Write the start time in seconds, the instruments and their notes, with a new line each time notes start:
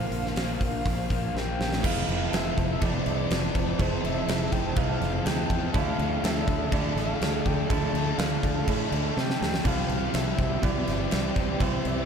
Already playing: distorted electric guitar A#2 F3 A#3, clean electric guitar A#2 D3 A#3 C4 F4, analog synth pad D4 A#4 C5 F5, soft synth lead F5
0.11 fingered electric bass A#1, open hi-hat
0.26 snare
0.36 fingered electric bass A#1, distorted electric guitar A#2 F3 A#3, snare, open hi-hat
0.61 fingered electric bass A#1, kick, open hi-hat
0.86 fingered electric bass A#1, kick, open hi-hat
1.10 fingered electric bass A#1, distorted electric guitar F3 A#3, kick, open hi-hat
1.34 fingered electric bass A#1, distorted electric guitar A#2 F3 A#3, soft synth lead G5, snare
1.60 fingered electric bass A#1, distorted electric guitar F3 A#3, snare
1.72 snare
1.82 fingered electric bass F1, distorted electric guitar F2, clean electric guitar F3 A3 C4 E4, analog synth pad F3 C5 A5, soft synth lead F5, kick, crash
1.87 distorted electric guitar C3 F3
2.08 fingered electric bass F1, distorted electric guitar C3 F3, crash
2.33 fingered electric bass F1, distorted electric guitar F2 C3 F3, soft synth lead E5, snare, crash
2.57 fingered electric bass F1, distorted electric guitar C3 F3, kick, crash
2.81 fingered electric bass F1, distorted electric guitar F2 C3 F3, clean electric guitar F3 A3 C4 E4, soft synth lead D5, kick, crash
3.06 fingered electric bass C2, distorted electric guitar C3 F3, crash
3.30 fingered electric bass F1, distorted electric guitar F2 C3 F3, snare, crash
3.54 fingered electric bass F1, distorted electric guitar C3 F3, kick, crash
3.78 fingered electric bass F1, distorted electric guitar F2 C3 F3, clean electric guitar F3 A3 C4 E4, soft synth lead C5, kick, crash
4.03 fingered electric bass F1, distorted electric guitar C3 F3, soft synth lead E5, crash
4.28 fingered electric bass F1, distorted electric guitar F2 C3 F3, snare, crash
4.52 fingered electric bass F1, distorted electric guitar C3 F3, soft synth lead G5, kick, crash
4.76 fingered electric bass C2, distorted electric guitar F2 C3 F3, clean electric guitar F3 A3 C4 E4, soft synth lead F5, kick, crash
5.00 fingered electric bass F1, distorted electric guitar C3 F3, snare, crash
5.25 fingered electric bass D2, distorted electric guitar F2 C3 F3, soft synth lead G5, snare, crash
5.49 fingered electric bass E2, distorted electric guitar C3 F3, kick, crash
5.73 fingered electric bass D2, distorted electric guitar D3 A3 D4, clean electric guitar D3 A3 D4 F4, analog synth pad A4 D5, soft synth lead F5, kick, crash
5.99 fingered electric bass D2, distorted electric guitar A3 D4, crash
6.23 fingered electric bass D2, distorted electric guitar D3 A3 D4, soft synth lead E5, snare, crash
6.47 fingered electric bass D2, distorted electric guitar A3 D4, kick, crash
6.71 fingered electric bass D2, clean electric guitar D3 A3 D4 F4, distorted electric guitar D3 A3 D4, soft synth lead D5, kick, crash
6.95 fingered electric bass A1, distorted electric guitar D4, soft synth lead F5, snare, crash
6.99 distorted electric guitar A3
7.21 fingered electric bass D2, distorted electric guitar D3 A3 D4, snare, crash
7.45 fingered electric bass D2, distorted electric guitar A3 D4, soft synth lead G5, kick, crash
7.70 fingered electric bass D2, distorted electric guitar D3 A3 D4, clean electric guitar D3 A3 D4 F4, soft synth lead A5, kick, crash
7.93 fingered electric bass D2, distorted electric guitar A3 D4, crash
8.18 fingered electric bass D2, distorted electric guitar D3 A3 D4, soft synth lead F5, snare, crash
8.43 fingered electric bass D2, distorted electric guitar A3 D4, kick, crash
8.67 fingered electric bass A2, clean electric guitar D3 A3 D4 F4, distorted electric guitar D3 A3 D4, kick, crash
8.92 fingered electric bass D2, distorted electric guitar A3 D4, crash
9.16 fingered electric bass C3, distorted electric guitar D3 A3 D4, soft synth lead G5, snare
9.30 snare
9.40 fingered electric bass D2, distorted electric guitar A3 D4, snare
9.54 snare
9.64 fingered electric bass C2, clean electric guitar C3 F3 G3 C4 F4, distorted electric guitar C3 G3 C4, analog synth pad G4 C5 G5, soft synth lead F5, kick, crash
9.89 fingered electric bass C2, distorted electric guitar G3 C4, crash
10.13 fingered electric bass C2, distorted electric guitar C3 G3 C4, soft synth lead E5, snare, crash
10.38 fingered electric bass C2, distorted electric guitar G3 C4, kick, crash
10.61 fingered electric bass C2, distorted electric guitar C3 G3 C4, clean electric guitar C3 F3 G3 C4, soft synth lead D5, kick, crash
10.65 clean electric guitar F4
10.86 fingered electric bass G1, distorted electric guitar G3 C4, snare, crash
11.11 fingered electric bass C2, distorted electric guitar C3 G3 C4, snare, crash
11.35 fingered electric bass C2, distorted electric guitar G3 C4, kick, crash
11.59 fingered electric bass C2, distorted electric guitar C3 G3 C4, clean electric guitar C3 F3 G3 C4 F4, soft synth lead C5, kick, crash
11.83 fingered electric bass C2, distorted electric guitar G3 C4, crash
11.87 soft synth lead E5